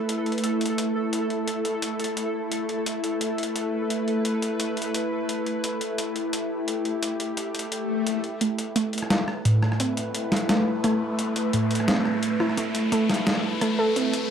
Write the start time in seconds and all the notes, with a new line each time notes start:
Already playing: A3 E4 A4
0.09 A4, closed hi-hat
0.26 closed hi-hat
0.32 closed hi-hat
0.38 closed hi-hat
0.44 closed hi-hat
0.61 closed hi-hat
0.66 closed hi-hat
0.78 closed hi-hat
1.13 closed hi-hat
1.30 closed hi-hat
1.48 closed hi-hat
1.65 closed hi-hat
1.82 closed hi-hat
2.00 closed hi-hat
2.04 closed hi-hat
2.17 closed hi-hat
2.52 closed hi-hat
2.69 closed hi-hat
2.86 B4, closed hi-hat
3.04 closed hi-hat
3.21 closed hi-hat
3.38 closed hi-hat
3.43 closed hi-hat
3.56 closed hi-hat
3.90 closed hi-hat
4.08 closed hi-hat
4.25 closed hi-hat
4.42 closed hi-hat
4.60 closed hi-hat
4.77 closed hi-hat
4.82 closed hi-hat
4.94 closed hi-hat
5.29 closed hi-hat
5.46 closed hi-hat
5.64 G4, closed hi-hat
5.81 closed hi-hat
5.98 closed hi-hat
6.16 closed hi-hat
6.33 closed hi-hat
6.68 closed hi-hat
6.85 closed hi-hat
7.03 closed hi-hat
7.20 closed hi-hat
7.37 closed hi-hat
7.55 closed hi-hat
7.59 closed hi-hat
7.72 closed hi-hat, swell
8.07 closed hi-hat
8.24 closed hi-hat
8.41 A3 E4 B4, closed hi-hat, riser
8.59 closed hi-hat
8.76 A3, closed hi-hat
8.93 closed hi-hat
8.98 closed hi-hat
9.02 cross-stick
9.10 snare, closed hi-hat
9.28 cross-stick
9.45 A2, closed hi-hat
9.63 cross-stick
9.72 cross-stick
9.80 C4, closed hi-hat
9.97 closed hi-hat
10.15 closed hi-hat
10.32 E4, snare, closed hi-hat
10.36 closed hi-hat
10.49 A3, snare, closed hi-hat
10.84 A3, cross-stick, closed hi-hat
11.19 closed hi-hat
11.36 closed hi-hat
11.53 A2, closed hi-hat
11.71 closed hi-hat
11.75 closed hi-hat
11.80 cross-stick
11.88 C4, snare, closed hi-hat
12.05 cross-stick
12.23 closed hi-hat
12.40 E4, cross-stick
12.49 cross-stick
12.57 A3, closed hi-hat
12.75 closed hi-hat
12.92 A3, closed hi-hat
13.10 snare, closed hi-hat
13.14 closed hi-hat
13.27 snare, closed hi-hat
13.61 A3, cross-stick, closed hi-hat
13.79 A4
13.96 C4, closed hi-hat
14.13 closed hi-hat